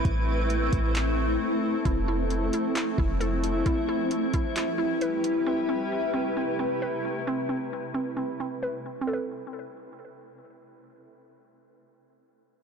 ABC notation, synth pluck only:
X:1
M:4/4
L:1/8
Q:1/4=133
K:Am
V:1 name="Synth pluck"
z8 | E E2 E E E A2 | E E2 E E E B2 | C C2 C C C B2 |
C C2 C C C B2 | [CAB]8- | [CAB]8 |]